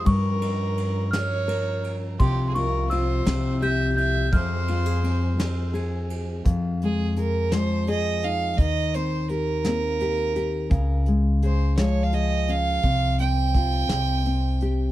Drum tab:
RD |xxxxxx|xxxxxx|xxxxxx|------|
HH |------|------|------|xxxxxx|
SD |---o--|---o--|---o--|---o--|
BD |o-----|o-----|o-----|o-----|

RD |------|------|------|
HH |xxxxxx|xxxxxx|xxxxxx|
SD |---o--|---o--|---o--|
BD |o-----|o-----|o-o---|